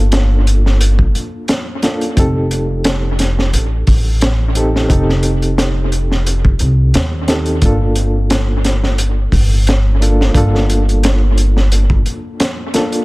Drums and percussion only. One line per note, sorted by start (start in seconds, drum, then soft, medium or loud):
0.12 snare loud
0.12 closed hi-hat medium
0.47 closed hi-hat medium
0.66 snare soft
0.81 closed hi-hat medium
0.99 kick medium
1.15 closed hi-hat medium
1.48 snare loud
1.48 closed hi-hat medium
1.82 snare medium
1.82 closed hi-hat medium
2.01 closed hi-hat soft
2.17 kick loud
2.17 closed hi-hat medium
2.51 closed hi-hat medium
2.84 snare loud
2.84 closed hi-hat medium
3.19 snare soft
3.19 closed hi-hat medium
3.39 snare soft
3.53 closed hi-hat medium
3.87 kick medium
3.87 open hi-hat medium
4.21 snare loud
4.21 closed hi-hat medium
4.55 closed hi-hat medium
4.76 snare soft
4.90 kick loud
4.90 closed hi-hat medium
5.09 snare soft
5.23 closed hi-hat medium
5.42 closed hi-hat soft
5.58 snare loud
5.58 closed hi-hat medium
5.92 closed hi-hat medium
6.12 snare soft
6.26 closed hi-hat medium
6.45 kick medium
6.59 closed hi-hat medium
6.94 snare medium
6.94 closed hi-hat medium
7.28 snare medium
7.28 closed hi-hat medium
7.46 closed hi-hat soft
7.62 kick loud
7.62 closed hi-hat medium
7.95 closed hi-hat medium
8.30 snare loud
8.30 closed hi-hat medium
8.64 snare medium
8.64 closed hi-hat medium
8.83 snare soft
8.98 closed hi-hat medium
9.32 kick medium
9.32 open hi-hat medium
9.67 snare loud
9.67 closed hi-hat medium
10.02 closed hi-hat medium
10.21 snare soft
10.35 kick medium
10.35 closed hi-hat medium
10.55 snare soft
10.70 closed hi-hat medium
10.89 closed hi-hat soft
11.03 snare loud
11.03 closed hi-hat loud
11.38 closed hi-hat medium
11.57 snare soft
11.72 closed hi-hat medium
11.90 kick medium
12.06 closed hi-hat medium
12.40 snare loud
12.40 closed hi-hat medium
12.74 snare medium
12.74 closed hi-hat medium
12.92 closed hi-hat soft